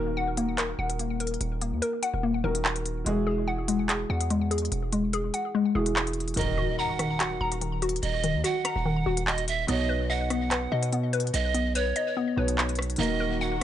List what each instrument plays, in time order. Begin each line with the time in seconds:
Already playing: 808-style bass D#1, grand piano D#3 D#4 F#4 A#4, synth pluck A#3 A#4
0.17 synth pluck F#5
0.37 synth pluck A#3, closed hi-hat
0.58 synth pluck A#4, clap, closed hi-hat
0.79 808-style bass D#1, synth pluck F#5
0.90 closed hi-hat
0.99 synth pluck A#3, closed hi-hat
1.20 synth pluck A#4, closed hi-hat
1.27 closed hi-hat
1.34 closed hi-hat
1.41 808-style bass D#1, closed hi-hat
1.61 synth pluck A#3, closed hi-hat
1.72 808-style bass D#2
1.82 synth pluck A#4, closed hi-hat
2.03 synth pluck F#5, closed hi-hat
2.14 808-style bass D#1
2.23 synth pluck A#3
2.44 808-style bass D#1, grand piano D#3 D#4 F#4 A#4, synth pluck A#4
2.55 closed hi-hat
2.65 clap
2.76 closed hi-hat
2.86 closed hi-hat
3.05 808-style bass E1, grand piano E3 E4 F#4 G#4, synth pluck G#3, closed hi-hat
3.27 synth pluck G#4
3.48 synth pluck F#5
3.68 synth pluck G#3, closed hi-hat
3.89 synth pluck G#4, clap, closed hi-hat
4.10 808-style bass E2, synth pluck F#5
4.21 closed hi-hat
4.30 synth pluck G#3, closed hi-hat
4.51 synth pluck G#4, closed hi-hat
4.58 closed hi-hat
4.65 closed hi-hat
4.72 808-style bass E1, closed hi-hat
4.93 synth pluck G#3, closed hi-hat
5.13 synth pluck G#4, closed hi-hat
5.34 synth pluck F#5, closed hi-hat
5.55 synth pluck G#3
5.75 808-style bass E1, grand piano E3 E4 F#4 G#4, synth pluck G#4
5.86 closed hi-hat
5.96 clap
6.07 closed hi-hat
6.13 closed hi-hat
6.20 closed hi-hat
6.28 closed hi-hat
6.34 grand piano D#3 D#4, synth pluck D#3, closed hi-hat
6.37 808-style bass D#1, grand piano F#4 A#4, pan flute D#5, closed hi-hat, impact
6.41 closed hi-hat
6.58 synth pluck F#4
6.79 pan flute F#5, synth pluck A#5
6.99 synth pluck D#3, cross-stick, closed hi-hat
7.20 synth pluck F#4, clap, closed hi-hat
7.41 808-style bass D#1, synth pluck A#5
7.52 closed hi-hat
7.61 synth pluck D#3, closed hi-hat
7.82 synth pluck F#4, closed hi-hat
7.89 closed hi-hat
7.96 closed hi-hat
8.03 808-style bass D#1, pan flute D#5, closed hi-hat
8.24 synth pluck D#3, closed hi-hat
8.34 808-style bass D#2
8.44 synth pluck F#4, pan flute F#5, closed hi-hat
8.65 synth pluck A#5, cross-stick, closed hi-hat
8.76 808-style bass D#1
8.85 synth pluck D#3
9.06 808-style bass D#1, synth pluck F#4
9.17 closed hi-hat
9.27 pan flute D#5, clap
9.38 closed hi-hat
9.48 pan flute E5, closed hi-hat
9.67 808-style bass B1, grand piano B2 B3 D#4 C#5, synth pluck B3, pan flute D#5, closed hi-hat
9.89 synth pluck B4
10.10 synth pluck D#5, pan flute F#5
10.30 synth pluck B3, cross-stick, closed hi-hat
10.51 synth pluck B4, clap, closed hi-hat
10.72 808-style bass B2, synth pluck D#5
10.83 closed hi-hat
10.93 synth pluck B3, closed hi-hat
11.13 synth pluck B4, closed hi-hat
11.20 closed hi-hat
11.27 closed hi-hat
11.34 808-style bass B1, pan flute D#5, closed hi-hat
11.54 synth pluck B3, closed hi-hat
11.75 synth pluck B4, pan flute C#5, closed hi-hat
11.96 synth pluck D#5, closed hi-hat
12.17 synth pluck B3
12.36 808-style bass B1, grand piano B2 B3 D#4 C#5, synth pluck B4
12.48 closed hi-hat
12.58 clap
12.69 closed hi-hat
12.75 cross-stick, closed hi-hat
12.82 closed hi-hat
12.90 closed hi-hat
12.96 808-style bass D#1, grand piano D#3 D#4 F#4, string section D#3 F#3 A#3 F#4, synth pluck A#3, pan flute D#5, closed hi-hat
13.01 grand piano A#4, closed hi-hat
13.20 synth pluck A#4
13.41 pan flute F#5, synth pluck F#5